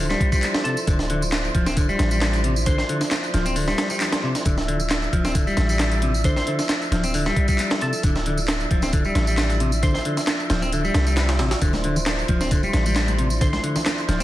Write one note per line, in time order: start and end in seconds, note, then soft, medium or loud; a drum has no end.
0.00 0.14 D1 medium
0.00 14.23 F3 medium
0.00 14.23 D4 medium
0.00 14.23 E4 medium
0.00 4.44 C5 medium
0.09 0.31 G3 medium
0.09 snare soft
0.09 tambourine soft
0.20 kick loud
0.20 closed hi-hat medium
0.32 0.64 G3 medium
0.32 kick medium
0.32 tambourine medium
0.43 clap loud
0.43 closed hi-hat medium
0.43 tambourine medium
0.54 snare loud
0.54 tambourine soft
0.64 0.74 C3 medium
0.64 1.09 A4 medium
0.64 closed hi-hat medium
0.77 tambourine medium
0.87 1.49 D1 loud
0.87 0.97 D3 medium
0.87 kick loud
0.87 closed hi-hat medium
0.87 tambourine medium
0.99 snare soft
0.99 tambourine soft
1.10 1.21 D3 medium
1.10 closed hi-hat medium
1.22 tambourine medium
1.32 snare loud
1.32 clap loud
1.32 closed hi-hat medium
1.32 tambourine medium
1.45 tambourine soft
1.55 1.94 D1 medium
1.55 1.66 F3 medium
1.55 kick loud
1.55 closed hi-hat medium
1.66 1.76 C4 medium
1.66 snare soft
1.66 tambourine medium
1.77 1.86 D3 medium
1.77 kick loud
1.77 closed hi-hat medium
1.77 tambourine medium
1.89 2.10 G3 medium
1.89 tambourine soft
1.99 2.83 A1 medium
1.99 snare medium
1.99 closed hi-hat medium
2.11 2.43 G3 medium
2.11 tambourine medium
2.21 snare loud
2.21 clap loud
2.21 closed hi-hat medium
2.21 tambourine medium
2.33 closed hi-hat soft
2.33 tambourine soft
2.44 2.54 C3 medium
2.44 closed hi-hat medium
2.56 tambourine medium
2.66 2.76 D3 medium
2.66 2.74 C5 medium
2.66 kick loud
2.66 closed hi-hat medium
2.66 tambourine medium
2.78 2.85 C5 medium
2.78 snare soft
2.78 tambourine soft
2.89 3.00 D3 medium
2.89 closed hi-hat medium
3.01 snare soft
3.01 tambourine medium
3.11 snare loud
3.11 clap loud
3.11 closed hi-hat medium
3.11 tambourine medium
3.23 tambourine soft
3.34 3.73 D1 medium
3.34 3.45 F3 medium
3.34 snare soft
3.34 closed hi-hat medium
3.46 3.55 C4 medium
3.46 closed hi-hat soft
3.46 tambourine medium
3.56 3.65 D3 medium
3.56 open hi-hat medium
3.56 tambourine medium
3.68 3.89 G3 medium
3.68 snare soft
3.68 tambourine soft
3.78 snare loud
3.78 closed hi-hat medium
3.90 4.22 G3 medium
3.90 tambourine medium
4.01 snare soft
4.01 clap loud
4.01 closed hi-hat medium
4.01 tambourine medium
4.12 snare loud
4.12 closed hi-hat medium
4.12 tambourine soft
4.23 4.32 C3 medium
4.35 snare soft
4.35 closed hi-hat medium
4.35 tambourine medium
4.45 5.07 D1 loud
4.45 4.55 D3 medium
4.45 11.61 E5 medium
4.45 kick loud
4.45 closed hi-hat medium
4.45 tambourine medium
4.57 snare soft
4.57 tambourine soft
4.68 4.79 D3 medium
4.68 closed hi-hat medium
4.80 tambourine medium
4.90 snare loud
4.90 clap loud
4.90 closed hi-hat medium
4.90 tambourine medium
5.02 tambourine soft
5.13 5.52 D1 medium
5.13 5.24 F3 medium
5.13 kick medium
5.13 closed hi-hat medium
5.25 5.34 C4 medium
5.25 snare soft
5.25 tambourine medium
5.35 5.44 D3 medium
5.35 kick loud
5.35 closed hi-hat medium
5.35 tambourine medium
5.47 5.68 G3 medium
5.47 tambourine soft
5.57 6.41 A1 medium
5.57 snare medium
5.57 closed hi-hat medium
5.69 6.01 G3 medium
5.69 tambourine medium
5.79 snare loud
5.79 clap loud
5.79 closed hi-hat medium
5.79 tambourine soft
5.92 closed hi-hat soft
5.92 tambourine soft
6.02 6.12 C3 medium
6.02 closed hi-hat medium
6.14 tambourine medium
6.24 6.34 D3 medium
6.24 6.32 C5 medium
6.24 kick loud
6.24 closed hi-hat medium
6.24 tambourine soft
6.36 6.44 C5 medium
6.36 snare soft
6.36 tambourine soft
6.47 6.59 D3 medium
6.47 closed hi-hat medium
6.59 snare soft
6.59 tambourine medium
6.69 snare loud
6.69 clap loud
6.69 closed hi-hat medium
6.69 tambourine medium
6.82 tambourine soft
6.91 7.31 D1 medium
6.91 7.03 F3 medium
6.91 snare soft
6.91 closed hi-hat medium
7.04 7.13 C4 medium
7.04 closed hi-hat soft
7.04 tambourine medium
7.14 7.24 D3 medium
7.14 open hi-hat medium
7.14 tambourine medium
7.26 7.47 G3 medium
7.26 snare soft
7.26 tambourine soft
7.36 kick loud
7.36 closed hi-hat medium
7.48 7.80 G3 medium
7.48 kick medium
7.48 tambourine medium
7.59 clap loud
7.59 closed hi-hat medium
7.59 tambourine soft
7.70 snare loud
7.70 tambourine soft
7.81 7.91 C3 medium
7.81 8.27 A4 loud
7.81 closed hi-hat medium
7.93 tambourine medium
8.03 8.65 D1 loud
8.03 8.13 D3 medium
8.03 kick loud
8.03 closed hi-hat medium
8.03 tambourine medium
8.15 snare soft
8.15 tambourine soft
8.26 8.38 D3 medium
8.26 closed hi-hat medium
8.37 tambourine medium
8.48 snare loud
8.48 clap loud
8.48 closed hi-hat medium
8.48 tambourine medium
8.60 tambourine soft
8.71 9.10 D1 medium
8.71 8.82 F3 medium
8.71 kick loud
8.71 closed hi-hat medium
8.82 8.92 C4 medium
8.82 snare soft
8.82 tambourine medium
8.93 9.03 D3 medium
8.93 kick loud
8.93 closed hi-hat medium
8.93 tambourine medium
9.05 9.27 G3 medium
9.05 tambourine soft
9.15 9.99 A1 medium
9.15 snare medium
9.15 closed hi-hat medium
9.27 9.59 G3 medium
9.27 tambourine medium
9.38 snare loud
9.38 clap loud
9.38 closed hi-hat medium
9.38 tambourine medium
9.50 closed hi-hat soft
9.50 tambourine soft
9.60 9.70 C3 medium
9.60 closed hi-hat medium
9.72 tambourine medium
9.83 9.92 D3 medium
9.83 9.90 C5 medium
9.83 kick loud
9.83 closed hi-hat medium
9.83 tambourine medium
9.94 10.01 C5 medium
9.94 snare soft
9.94 tambourine soft
10.05 10.17 D3 medium
10.05 closed hi-hat medium
10.17 snare soft
10.17 tambourine medium
10.27 snare loud
10.27 clap loud
10.27 closed hi-hat medium
10.27 tambourine medium
10.40 tambourine soft
10.50 10.89 D1 medium
10.50 10.61 F3 medium
10.50 snare loud
10.50 closed hi-hat medium
10.62 10.71 C4 medium
10.62 tambourine medium
10.72 10.82 D3 medium
10.72 closed hi-hat medium
10.72 tambourine medium
10.85 11.06 G3 medium
10.85 tambourine soft
10.94 11.41 C2 medium
10.94 snare loud
10.94 closed hi-hat medium
11.07 11.39 G3 medium
11.07 tambourine medium
11.17 snare loud
11.17 clap loud
11.17 closed hi-hat medium
11.17 tambourine medium
11.29 snare loud
11.29 closed hi-hat medium
11.29 tambourine soft
11.39 11.55 A1 medium
11.39 11.49 C3 medium
11.39 snare loud
11.39 closed hi-hat medium
11.51 snare loud
11.51 closed hi-hat medium
11.51 tambourine medium
11.62 12.23 D1 loud
11.62 11.71 D3 medium
11.62 14.23 C5 medium
11.62 kick loud
11.62 closed hi-hat medium
11.62 tambourine medium
11.73 snare soft
11.73 tambourine soft
11.73 high conga medium
11.84 11.96 D3 medium
11.84 closed hi-hat medium
11.84 muted conga medium
11.96 tambourine medium
11.96 low conga medium
12.06 snare loud
12.06 clap loud
12.06 closed hi-hat medium
12.19 tambourine soft
12.28 12.68 D1 medium
12.28 12.41 F3 medium
12.28 kick loud
12.28 closed hi-hat medium
12.28 muted conga medium
12.41 12.51 C4 medium
12.41 snare soft
12.41 tambourine medium
12.51 12.61 D3 medium
12.51 kick loud
12.51 closed hi-hat medium
12.51 tambourine medium
12.63 12.85 G3 medium
12.63 tambourine soft
12.63 muted conga medium
12.73 13.58 A1 medium
12.73 snare medium
12.73 closed hi-hat medium
12.86 13.18 G3 medium
12.86 tambourine medium
12.86 high conga medium
12.96 snare loud
12.96 clap loud
12.96 closed hi-hat medium
12.96 tambourine medium
13.08 closed hi-hat soft
13.08 tambourine soft
13.08 muted conga medium
13.08 high conga medium
13.19 13.28 C3 medium
13.19 closed hi-hat medium
13.30 tambourine medium
13.41 13.50 D3 medium
13.41 13.49 C5 medium
13.41 kick loud
13.41 closed hi-hat medium
13.41 tambourine medium
13.41 muted conga medium
13.53 13.60 C5 medium
13.53 snare soft
13.53 tambourine soft
13.53 high conga medium
13.63 13.75 D3 medium
13.63 closed hi-hat medium
13.76 snare soft
13.76 tambourine medium
13.76 low conga medium
13.86 snare loud
13.86 clap loud
13.86 closed hi-hat medium
13.86 tambourine medium
13.86 muted conga medium
13.98 tambourine soft
14.08 14.23 D1 medium
14.08 14.20 F3 medium
14.08 snare soft
14.08 closed hi-hat medium
14.20 14.23 C4 medium
14.20 closed hi-hat soft
14.20 tambourine medium
14.20 muted conga medium